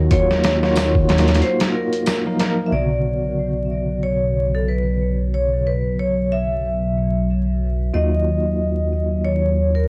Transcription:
0.00 1.07 D#2 loud
0.00 2.70 F#3 medium
0.00 0.12 A#3 medium
0.00 0.12 D#4 medium
0.00 0.11 F4 loud
0.00 0.13 F#4 loud
0.11 0.58 A#3 medium
0.11 0.58 D#4 medium
0.11 0.58 F4 medium
0.11 0.59 F#4 medium
0.11 1.38 C#5 loud
0.11 kick loud
0.11 closed hi-hat medium
0.31 snare soft
0.44 snare loud
0.44 closed hi-hat medium
0.63 1.06 A#3 medium
0.63 1.06 D#4 medium
0.63 1.06 F4 loud
0.63 1.06 F#4 loud
0.63 snare soft
0.76 snare loud
0.76 closed hi-hat medium
0.76 tambourine medium
0.95 kick loud
1.08 1.42 D#2 loud
1.08 2.22 A#3 medium
1.08 2.22 D#4 medium
1.08 2.21 F4 medium
1.08 2.23 F#4 loud
1.08 snare medium
1.08 closed hi-hat medium
1.18 snare medium
1.18 closed hi-hat medium
1.28 snare medium
1.28 closed hi-hat medium
1.34 snare medium
1.34 closed hi-hat medium
1.42 1.57 C5 loud
1.42 closed hi-hat medium
1.60 snare loud
1.60 closed hi-hat medium
1.74 2.35 A#4 medium
1.93 closed hi-hat medium
2.06 snare loud
2.06 closed hi-hat medium
2.06 tambourine medium
2.26 2.36 F3 medium
2.26 2.36 A#3 medium
2.26 2.37 D#4 medium
2.26 2.37 A#4 medium
2.40 2.69 F3 medium
2.40 2.69 A#3 medium
2.40 2.69 D#4 medium
2.40 2.69 A#4 medium
2.40 snare medium
2.40 closed hi-hat medium
2.67 2.72 E5 medium
2.71 7.91 B1 medium
2.71 7.91 C#3 medium
2.71 7.90 D3 medium
2.71 9.88 F#3 medium
2.71 7.91 B3 medium
2.71 7.91 F#4 medium
2.71 3.99 D5 medium
4.03 4.55 C#5 medium
4.55 4.68 A4 medium
4.68 5.16 B4 medium
5.34 5.67 C#5 medium
5.67 5.96 B4 medium
5.99 6.32 C#5 medium
6.32 7.25 E5 medium
7.93 9.88 D#2 medium
7.93 9.88 A#3 medium
7.93 9.88 D#4 medium
7.93 9.88 F4 medium
7.93 9.88 F#4 medium
7.93 9.28 D#5 medium
9.24 9.77 C#5 medium
9.75 9.88 A#4 medium

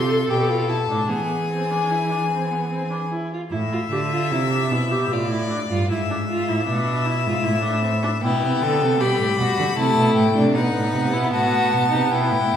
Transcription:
0.00 0.30 C3 medium
0.00 0.12 G4 medium
0.00 1.06 A4 medium
0.00 0.27 C6 medium
0.10 0.31 A4 medium
0.30 0.89 B2 medium
0.30 0.51 G4 medium
0.30 0.71 G5 medium
0.49 0.68 F4 medium
0.69 0.77 E4 medium
0.69 1.10 A5 medium
0.90 1.10 A2 medium
0.90 1.11 D4 medium
1.09 3.07 E3 medium
1.09 1.50 B3 medium
1.09 3.07 G#4 medium
1.09 3.07 G#5 medium
1.50 1.72 C4 medium
1.70 1.92 D4 medium
1.91 2.12 E4 medium
2.11 2.30 D4 soft
2.30 2.52 C4 medium
2.51 2.70 B3 medium
2.70 2.90 C4 medium
2.90 2.98 D4 medium
3.11 3.31 E4 medium
3.33 3.41 F4 medium
3.51 3.89 A2 medium
3.51 3.60 E4 medium
3.51 5.14 E5 medium
3.72 3.80 F4 medium
3.91 4.33 D3 medium
3.91 3.99 G4 medium
4.12 4.31 F4 medium
4.31 4.72 C3 medium
4.31 4.40 E4 medium
4.52 4.73 D4 medium
4.71 5.10 B2 medium
4.71 4.93 E4 medium
4.91 5.13 G4 medium
5.11 5.69 A2 medium
5.11 5.30 F4 medium
5.11 5.91 D5 medium
5.31 5.50 E4 medium
5.50 5.58 D4 medium
5.71 5.90 G2 medium
5.71 5.89 F4 medium
5.90 6.51 G#2 medium
5.90 5.98 E4 medium
5.90 8.20 E5 medium
6.10 6.18 D4 medium
6.29 6.50 F4 medium
6.49 6.68 A2 medium
6.49 6.66 E4 medium
6.67 7.28 B2 medium
6.67 7.07 D4 medium
7.06 7.25 E4 medium
7.26 7.47 G#2 medium
7.26 7.45 F4 medium
7.44 8.23 A2 medium
7.44 7.63 E4 medium
7.63 7.82 D4 medium
7.83 7.91 C4 medium
8.03 8.11 D4 medium
8.22 8.44 B2 medium
8.22 8.98 B3 medium
8.22 8.64 E4 medium
8.22 9.02 G5 medium
8.43 8.62 C3 medium
8.62 8.83 D3 medium
8.62 9.02 A4 medium
8.82 9.03 C3 medium
9.00 9.20 B2 medium
9.00 9.75 G3 medium
9.00 9.38 G4 medium
9.00 9.78 B5 medium
9.21 9.28 A2 medium
9.39 9.47 B2 medium
9.39 9.76 F#4 medium
9.59 9.66 D3 medium
9.76 9.96 C3 medium
9.76 10.55 A3 medium
9.76 10.34 E4 medium
9.76 10.15 A5 medium
9.98 10.16 B2 medium
10.16 10.35 A2 medium
10.16 10.54 G5 medium
10.36 10.57 C3 medium
10.36 10.57 D4 medium
10.54 10.74 B2 medium
10.54 12.57 B3 medium
10.54 11.14 D#4 medium
10.54 11.31 F#5 medium
10.75 10.96 A2 medium
10.94 11.15 C3 medium
11.13 11.33 B2 medium
11.13 11.32 E4 medium
11.33 11.74 A2 medium
11.33 11.90 F#4 loud
11.33 12.12 A5 medium
11.73 11.94 B2 medium
11.91 12.11 C3 medium
11.91 12.11 D#4 medium
12.11 12.33 B2 medium
12.11 12.57 E4 medium
12.11 12.57 G5 medium
12.31 12.53 A2 medium
12.52 12.57 G2 medium

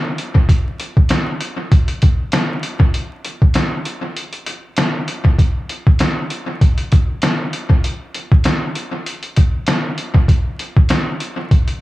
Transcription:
0.18 closed hi-hat medium
0.35 kick medium
0.49 kick loud
0.49 closed hi-hat medium
0.80 closed hi-hat medium
0.97 kick medium
1.09 snare loud
1.09 snare medium
1.09 closed hi-hat medium
1.41 closed hi-hat medium
1.72 kick loud
1.72 closed hi-hat medium
1.88 closed hi-hat medium
2.02 kick medium
2.02 closed hi-hat medium
2.32 snare loud
2.32 snare medium
2.32 closed hi-hat loud
2.63 closed hi-hat medium
2.80 kick medium
2.94 closed hi-hat medium
3.25 closed hi-hat medium
3.42 kick loud
3.54 snare loud
3.54 snare medium
3.54 closed hi-hat medium
3.85 closed hi-hat medium
4.17 closed hi-hat medium
4.33 closed hi-hat medium
4.46 closed hi-hat medium
4.77 snare loud
4.77 snare medium
4.77 closed hi-hat loud
5.08 closed hi-hat medium
5.25 kick medium
5.38 kick loud
5.38 closed hi-hat medium
5.69 closed hi-hat medium
5.87 kick loud
5.99 snare loud
5.99 snare medium
5.99 closed hi-hat medium
6.30 closed hi-hat medium
6.61 kick loud
6.61 closed hi-hat medium
6.78 closed hi-hat medium
6.92 kick medium
6.92 closed hi-hat medium
7.22 snare loud
7.22 snare medium
7.22 closed hi-hat loud
7.53 closed hi-hat medium
7.70 kick loud
7.84 closed hi-hat medium
8.15 closed hi-hat medium
8.32 kick loud
8.44 snare loud
8.44 snare medium
8.44 closed hi-hat medium
8.75 closed hi-hat medium
9.06 closed hi-hat medium
9.23 closed hi-hat medium
9.36 kick medium
9.36 closed hi-hat medium
9.67 snare loud
9.67 snare medium
9.67 closed hi-hat loud
9.98 closed hi-hat medium
10.15 kick medium
10.28 kick loud
10.28 closed hi-hat medium
10.59 closed hi-hat medium
10.76 kick loud
10.89 snare loud
10.89 snare medium
10.89 closed hi-hat medium
11.20 closed hi-hat medium
11.51 kick loud
11.51 closed hi-hat medium
11.68 closed hi-hat medium

